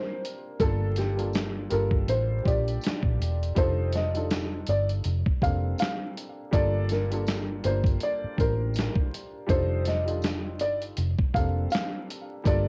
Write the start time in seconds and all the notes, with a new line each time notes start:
Already playing: G3 A#3 C4 D4 A#4 C5
0.25 closed hi-hat
0.60 G1 G3 A#3 D4 F4 A4, kick, closed hi-hat
0.96 G4, snare, closed hi-hat
1.16 G3 A#3 D4 F4 A4, closed hi-hat
1.33 snare, closed hi-hat, tambourine
1.70 G1 G3 A#3 D4 F4 A4 A#4, closed hi-hat
1.91 kick
2.08 A1 C5, closed hi-hat
2.43 A#1 G3 A#3 D4 F4 G4, kick
2.48 D5, closed hi-hat
2.68 closed hi-hat
2.81 closed hi-hat, tambourine
2.87 snare
3.03 A#1, kick
3.20 E1, closed hi-hat
3.43 closed hi-hat
3.55 F1 G3 D4 D#4 F4 A4 C5, kick, closed hi-hat
3.92 D#5, snare, closed hi-hat
4.14 G3 D4 D#4 F4 A4, closed hi-hat
4.30 snare, closed hi-hat, tambourine
4.66 G1 D5, closed hi-hat
4.89 closed hi-hat
5.04 F1, closed hi-hat
5.26 kick
5.41 F1 G3 A#3 C4 D4 A4 F5, kick, closed hi-hat
5.78 F5, snare, closed hi-hat, tambourine
6.17 closed hi-hat
6.51 G1 G3 A#3 D4 F4 A4 D5, kick, closed hi-hat
6.89 A#4, snare, closed hi-hat
7.11 G3 A#3 D4 F4 A4, closed hi-hat
7.27 snare, closed hi-hat, tambourine
7.64 G1 G3 A#3 D4 F4 C5, closed hi-hat
7.84 kick, closed hi-hat
8.00 D5, closed hi-hat
8.24 muted fingered electric bass stroke
8.37 A1 G3 A#3 D4 F4 A#4 C5, kick, closed hi-hat
8.74 closed hi-hat, tambourine
8.79 snare
8.95 kick
9.14 closed hi-hat
9.47 F1 G3 D4 D#4 F4 A4 C5, kick, closed hi-hat
9.86 D#5, snare, closed hi-hat
10.06 G3 D4 D#4 F4 A4, closed hi-hat
10.22 snare, closed hi-hat, tambourine
10.59 G1 D5, closed hi-hat
10.82 closed hi-hat
10.97 F1, closed hi-hat
11.19 kick
11.34 F1 G3 A#3 C4 D4 A4 F5, kick, closed hi-hat
11.70 F5, closed hi-hat, tambourine
11.75 snare
12.10 closed hi-hat
12.43 G1 G3 A#3 D4 F4 A4 D5, kick, closed hi-hat